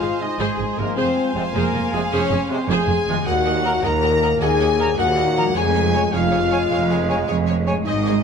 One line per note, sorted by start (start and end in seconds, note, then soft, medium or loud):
0.00 0.09 G#1 medium
0.00 0.90 G#2 medium
0.00 0.09 G#2 medium
0.00 0.83 G#3 medium
0.00 0.19 F4 loud
0.00 0.87 G#4 medium
0.00 0.10 G#4 medium
0.00 3.23 C5 medium
0.00 0.94 D#5 medium
0.00 0.20 F5 loud
0.00 0.21 F5 medium
0.00 0.66 G#5 medium
0.00 0.93 G#5 medium
0.00 2.54 C6 medium
0.19 0.27 C3 medium
0.19 0.27 G#3 medium
0.19 0.40 D#4 loud
0.19 0.40 D#5 medium
0.19 0.40 D#5 loud
0.39 0.47 G#1 medium
0.39 0.47 G#2 loud
0.39 0.77 G#3 medium
0.39 0.78 G#4 loud
0.39 0.56 G#4 medium
0.39 0.78 G#4 medium
0.39 0.57 C5 loud
0.58 0.67 G#1 medium
0.58 0.66 G#2 medium
0.58 0.66 G#4 medium
0.77 0.86 G#1 medium
0.77 0.85 G#2 medium
0.77 0.85 C3 medium
0.77 3.19 F3 medium
0.77 0.85 G#3 medium
0.77 0.97 A#3 loud
0.77 0.86 D#4 medium
0.77 0.85 G#4 medium
0.77 0.97 A#4 medium
0.84 3.21 G#3 medium
0.88 3.24 G#4 medium
0.96 1.05 F1 loud
0.96 1.05 F2 loud
0.96 1.34 C4 loud
0.96 1.14 G#4 loud
0.96 1.14 C5 loud
0.96 1.34 C5 loud
0.96 1.35 C5 medium
0.96 3.23 F5 medium
0.96 3.22 G#5 medium
1.35 1.43 F1 medium
1.35 1.42 F2 medium
1.35 1.43 C3 medium
1.35 1.42 G#3 medium
1.35 1.44 C4 loud
1.35 1.43 F4 medium
1.35 1.43 G#4 medium
1.35 1.44 C5 medium
1.35 1.54 C5 loud
1.53 1.62 F1 loud
1.53 1.62 F2 loud
1.53 1.91 A#3 loud
1.53 1.72 G#4 medium
1.53 1.91 A#4 medium
1.53 1.93 A#4 medium
1.53 1.72 C5 medium
1.73 1.82 F1 medium
1.73 1.81 F2 medium
1.73 1.81 G#4 medium
1.92 2.01 F1 medium
1.92 2.00 F2 medium
1.92 2.00 C3 medium
1.92 2.11 G#3 medium
1.92 2.00 G#3 medium
1.92 2.00 F4 medium
1.92 2.00 G#4 medium
1.92 2.12 G#4 loud
2.10 2.20 F1 loud
2.10 2.19 F2 loud
2.10 2.49 C#4 loud
2.10 2.50 C#4 loud
2.10 2.29 G#4 loud
2.10 2.29 C5 medium
2.10 2.51 C#5 loud
2.30 2.38 F1 medium
2.30 2.38 F2 medium
2.30 2.39 G#4 medium
2.50 2.57 C3 loud
2.50 2.57 G#3 loud
2.50 2.69 C4 loud
2.50 2.69 C5 loud
2.50 2.70 C5 medium
2.68 2.77 F1 loud
2.68 2.76 F2 loud
2.68 3.10 G#4 loud
2.68 2.87 G#4 loud
2.68 2.88 C5 loud
2.68 3.26 G#5 loud
2.68 3.25 G#5 loud
2.87 2.95 F1 medium
2.87 2.95 F2 medium
2.87 2.97 G#4 medium
3.06 3.14 F1 medium
3.06 3.14 F2 medium
3.06 3.15 C3 loud
3.06 5.48 D#3 medium
3.06 3.15 G#3 loud
3.06 3.15 F4 medium
3.06 3.15 G#4 medium
3.13 5.50 A#3 medium
3.17 5.52 F#4 medium
3.21 3.76 D#2 loud
3.21 5.54 D#5 medium
3.25 3.79 A#2 medium
3.25 3.79 A#3 medium
3.25 3.83 F#4 loud
3.25 3.34 A#4 medium
3.25 3.33 D#5 medium
3.25 3.83 F#5 loud
3.25 3.34 F#5 medium
3.25 3.82 F#5 loud
3.45 3.53 A#4 medium
3.45 3.53 D#5 medium
3.45 3.53 F#5 medium
3.64 3.71 A#4 medium
3.64 3.72 A#4 loud
3.64 3.71 D#5 medium
3.64 3.72 F#5 medium
3.64 3.74 A#5 medium
3.83 4.33 D#2 loud
3.83 4.34 D#2 loud
3.83 4.96 A#2 loud
3.83 4.96 A#3 loud
3.83 3.91 A#4 medium
3.83 4.41 A#4 loud
3.83 3.91 D#5 medium
3.83 3.92 F#5 medium
3.83 4.24 A#5 loud
3.83 4.41 A#5 loud
4.03 4.10 A#4 medium
4.03 4.10 D#5 medium
4.03 4.11 F#5 medium
4.22 4.30 A#4 medium
4.22 4.29 A#4 medium
4.22 4.30 D#5 medium
4.22 4.30 F#5 medium
4.22 4.31 A#5 medium
4.39 4.91 D#2 loud
4.39 4.97 G#4 loud
4.39 4.48 A#4 medium
4.39 4.48 D#5 medium
4.39 4.49 F#5 medium
4.39 4.97 G#5 loud
4.59 4.67 A#4 medium
4.59 4.67 D#5 medium
4.59 4.68 F#5 medium
4.78 4.86 A#4 medium
4.78 4.86 D#5 medium
4.78 4.87 F#5 medium
4.78 4.88 A#5 loud
4.97 5.48 D#2 loud
4.97 5.49 D#2 medium
4.97 5.54 A#2 loud
4.97 5.54 A#3 medium
4.97 5.54 F#4 loud
4.97 5.05 A#4 medium
4.97 5.05 D#5 medium
4.97 5.54 F#5 loud
4.97 5.06 F#5 medium
5.16 5.24 A#4 medium
5.16 5.24 D#5 medium
5.16 5.24 F#5 medium
5.36 7.79 F3 medium
5.36 5.44 A#4 medium
5.36 5.44 D#5 medium
5.36 5.44 F#5 medium
5.36 5.46 A#5 loud
5.42 7.71 G#3 medium
5.47 7.76 G#4 medium
5.51 6.06 F1 loud
5.51 6.06 F2 loud
5.51 6.11 C#3 loud
5.51 6.11 G#3 medium
5.51 5.61 G#4 loud
5.51 7.86 C#5 medium
5.51 5.61 C#5 medium
5.51 5.63 C#5 loud
5.51 5.63 G#5 medium
5.56 6.13 G#4 loud
5.56 6.12 G#5 loud
5.56 6.14 G#5 loud
5.73 5.82 G#4 medium
5.73 5.81 C#5 medium
5.73 5.83 C#5 medium
5.73 5.83 G#5 medium
5.94 6.02 G#4 medium
5.94 6.01 C#5 medium
5.94 6.03 C#5 medium
5.94 6.02 C#5 loud
5.94 6.03 G#5 medium
6.12 6.64 F1 loud
6.12 6.64 F2 medium
6.12 7.82 C#3 loud
6.12 7.83 G#3 loud
6.12 7.26 F4 loud
6.12 6.20 G#4 medium
6.12 6.20 C#5 medium
6.12 6.22 C#5 medium
6.12 7.28 F5 loud
6.12 7.27 F5 loud
6.12 6.22 G#5 medium
6.31 6.39 G#4 medium
6.31 6.39 C#5 medium
6.31 6.40 C#5 medium
6.31 6.40 G#5 medium
6.51 6.58 G#4 medium
6.51 6.58 C#5 medium
6.51 6.59 C#5 loud
6.51 6.60 C#5 medium
6.51 6.61 G#5 loud
6.51 6.60 G#5 medium
6.71 7.22 F1 medium
6.71 7.22 F2 loud
6.71 6.78 G#4 medium
6.71 6.78 C#5 medium
6.71 6.79 C#5 medium
6.71 6.80 G#5 medium
6.90 6.98 G#4 medium
6.90 6.98 C#5 medium
6.90 6.98 G#5 medium
7.08 7.18 G#4 medium
7.08 7.16 C#5 medium
7.08 7.18 C#5 medium
7.08 7.18 G#5 medium
7.08 7.17 G#5 medium
7.27 7.80 F1 loud
7.27 7.79 F2 loud
7.27 7.36 G#4 medium
7.27 7.35 C#5 medium
7.27 7.36 C#5 medium
7.27 7.36 G#5 medium
7.47 7.56 G#4 medium
7.47 7.55 C#5 medium
7.47 7.56 C#5 medium
7.47 7.55 G#5 medium
7.66 8.23 G#2 medium
7.66 7.75 G#4 medium
7.66 7.74 C#5 medium
7.66 7.74 C#5 loud
7.66 7.75 C#5 medium
7.66 7.76 G#5 medium
7.66 7.75 G#5 medium
7.73 8.23 G#3 medium
7.77 8.23 G#4 medium
7.82 8.23 G#2 loud
7.82 8.21 D#4 loud
7.82 8.23 C5 medium
7.82 8.22 D#5 loud
7.86 8.23 G#1 medium
7.86 8.23 C3 medium
7.86 8.23 G#3 medium
7.86 7.94 G#4 medium
7.86 7.95 C5 medium
7.86 7.94 D#5 medium
7.86 8.22 D#5 loud
7.86 7.94 G#5 medium
8.05 8.15 G#4 medium
8.05 8.15 C5 medium
8.05 8.13 D#5 medium
8.05 8.13 G#5 medium